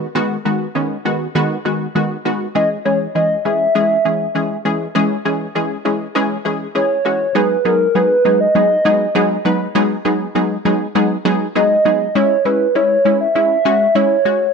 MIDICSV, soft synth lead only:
0, 0, Header, 1, 2, 480
1, 0, Start_track
1, 0, Key_signature, 5, "minor"
1, 0, Tempo, 600000
1, 123, Time_signature, 4, 2, 24, 8
1, 11628, End_track
2, 0, Start_track
2, 0, Title_t, "Soft synth lead"
2, 0, Program_c, 0, 80
2, 2042, Note_on_c, 0, 75, 101
2, 2150, Note_off_c, 0, 75, 0
2, 2281, Note_on_c, 0, 73, 88
2, 2390, Note_off_c, 0, 73, 0
2, 2520, Note_on_c, 0, 75, 105
2, 2745, Note_off_c, 0, 75, 0
2, 2761, Note_on_c, 0, 76, 113
2, 3690, Note_off_c, 0, 76, 0
2, 5404, Note_on_c, 0, 73, 100
2, 5885, Note_on_c, 0, 71, 95
2, 5897, Note_off_c, 0, 73, 0
2, 6125, Note_on_c, 0, 70, 95
2, 6137, Note_off_c, 0, 71, 0
2, 6366, Note_on_c, 0, 71, 101
2, 6378, Note_off_c, 0, 70, 0
2, 6720, Note_off_c, 0, 71, 0
2, 6725, Note_on_c, 0, 75, 112
2, 7532, Note_off_c, 0, 75, 0
2, 9246, Note_on_c, 0, 75, 113
2, 9726, Note_on_c, 0, 73, 112
2, 9738, Note_off_c, 0, 75, 0
2, 9965, Note_on_c, 0, 71, 100
2, 9977, Note_off_c, 0, 73, 0
2, 10201, Note_off_c, 0, 71, 0
2, 10206, Note_on_c, 0, 73, 102
2, 10539, Note_off_c, 0, 73, 0
2, 10565, Note_on_c, 0, 76, 117
2, 11166, Note_on_c, 0, 73, 115
2, 11178, Note_off_c, 0, 76, 0
2, 11628, Note_off_c, 0, 73, 0
2, 11628, End_track
0, 0, End_of_file